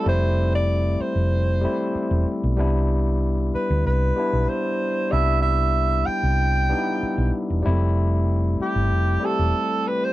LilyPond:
<<
  \new Staff \with { instrumentName = "Alto saxophone" } { \time 4/4 \key c \major \tempo 4 = 95 c''8. d''8. c''2 r8 | r4. b'8 b'4 c''4 | e''8 e''4 g''2 r8 | r4. g'4 a'4 b'16 c''16 | }
  \new Staff \with { instrumentName = "Tine electric piano" } { \time 4/4 \key c \major <g a c' e'>4. r4 <g a c' e'>4 r8 | <g b d' e'>4. r4 <g b d' e'>4 r8 | <g b d' e'>4. r4 <g b d' ees' e'>4 r8 | <g aes a c' e'>4. r4 <g a c' g'>4 r8 | }
  \new Staff \with { instrumentName = "Fingered electric bass" } { \clef bass \time 4/4 \key c \major f,,4. r16 f,,4 r8 e,,16 r16 b,,16 | c,4. r16 d,16 c,8 r16 b,,16 r4 | c,4. r16 c,4 r8 b,,16 r16 e,,16 | f,,4. r16 g,,16 f,,8 r16 e,,16 r4 | }
>>